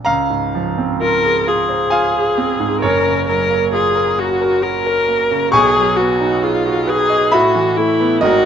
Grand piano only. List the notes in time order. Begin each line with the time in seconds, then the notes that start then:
0.05 C#2 F5 A#5
0.30 G#2
0.55 F3
0.78 C4
1.02 F4
1.24 G#4
1.47 F4
1.69 C5
1.90 F4 F5 G#5
2.14 G#4
2.38 C4
2.60 G#2
2.82 F#1 F#2 A#4 C#5
3.07 C#3
3.29 F#3
3.50 A#3
3.74 F4
3.95 A#4
4.19 F#4
4.41 A#4
4.62 F#4
4.86 A#4
5.08 A#3
5.31 C#3
5.52 B1 B2 G#5 C#6
5.76 F#3
5.99 B3
6.20 D#4
6.43 G#4
6.65 F#4
6.87 B4
7.10 D#5
7.32 A2 E5 B5
7.56 E3
7.78 A3
8.00 B3
8.21 G#1 G#2 A#4 D#5